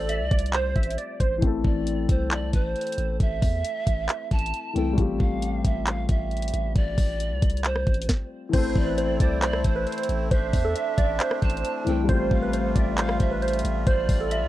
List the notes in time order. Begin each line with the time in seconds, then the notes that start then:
Already playing: A1 G3 A3 C4 F4 G4 D5
0.09 E5, closed hi-hat
0.20 C2
0.31 C2 D5, kick, closed hi-hat
0.39 closed hi-hat
0.46 closed hi-hat
0.53 C5, clap, closed hi-hat
0.76 A1 E5, kick, closed hi-hat
0.83 closed hi-hat
0.91 closed hi-hat
0.98 D5, closed hi-hat
1.20 A1 C5, kick, closed hi-hat
1.38 E3 A3
1.42 A1 C4 E4, kick, closed hi-hat
1.47 A4
1.64 A1 D5, kick
1.87 closed hi-hat
2.09 C2 C5, kick, closed hi-hat
2.31 B1 D5, clap, closed hi-hat
2.42 C2
2.53 A1 C5, kick, closed hi-hat
2.76 closed hi-hat
2.81 closed hi-hat
2.87 closed hi-hat
2.92 closed hi-hat
2.98 A1, closed hi-hat
3.20 A1 E5, kick, closed hi-hat
3.42 E2, kick, open hi-hat
3.65 closed hi-hat
3.87 A1, kick, closed hi-hat
4.09 clap, closed hi-hat
4.31 A1 A5, kick, closed hi-hat
4.39 closed hi-hat
4.46 closed hi-hat
4.54 closed hi-hat
4.73 C2 E3 A3 C4 E4 G5, closed hi-hat
4.78 A4
4.93 G3 A3
4.97 A1 C4 F4, kick, closed hi-hat
5.02 G4
5.20 A1 F5, kick
5.42 closed hi-hat
5.64 A1 E5, kick, closed hi-hat
5.87 F5, clap, closed hi-hat
6.09 A1 E5, kick, closed hi-hat
6.31 closed hi-hat
6.37 closed hi-hat
6.42 closed hi-hat
6.48 closed hi-hat
6.53 A1, closed hi-hat
6.76 A1 D5, kick, closed hi-hat
6.98 A1, kick, open hi-hat
7.20 closed hi-hat
7.31 C2
7.42 C2, kick, closed hi-hat
7.50 closed hi-hat
7.57 closed hi-hat
7.65 C5, clap, closed hi-hat
7.76 cross-stick
7.87 A1, kick, closed hi-hat
7.94 closed hi-hat
8.02 closed hi-hat
8.09 kick, snare
8.49 E3 A3
8.53 A1 A3 C4 E4 C5, kick, closed hi-hat, crash
8.58 A4
8.76 A1 D5, kick
8.87 B4
8.98 C5, closed hi-hat
9.20 C2 C5 D5, kick, closed hi-hat
9.42 B1 C5 D5, clap, closed hi-hat
9.53 C2, cross-stick
9.64 A1 C5, kick, closed hi-hat
9.76 B4
9.87 C5, closed hi-hat
9.92 closed hi-hat
9.98 closed hi-hat
10.03 closed hi-hat
10.09 A1, closed hi-hat
10.31 A1 D4 C5 E5, kick, closed hi-hat
10.53 E2, kick, open hi-hat
10.65 A4
10.76 E5, closed hi-hat
10.98 A1 D5, kick, closed hi-hat
11.20 C5, clap, closed hi-hat
11.31 cross-stick
11.42 A1 A5, kick, closed hi-hat
11.50 C5, closed hi-hat
11.57 closed hi-hat
11.65 closed hi-hat
11.84 C2 E3 A3 C4 E4 G5, closed hi-hat
11.89 A4
12.04 G3 A3
12.08 A1 G3 C4 F4 C5, kick, closed hi-hat
12.13 G4
12.31 A1 F5, kick
12.42 B4
12.53 C5, closed hi-hat
12.76 A1 D5 E5, kick, closed hi-hat
12.98 C5 F5, clap, closed hi-hat
13.09 cross-stick
13.20 A1 E5, kick, closed hi-hat
13.31 B4
13.42 C5, closed hi-hat
13.48 closed hi-hat
13.53 closed hi-hat
13.59 closed hi-hat
13.64 A1, closed hi-hat
13.87 A1 C5 D5, kick, closed hi-hat
14.09 A1, kick, open hi-hat
14.20 A4
14.31 E5, closed hi-hat
14.42 C2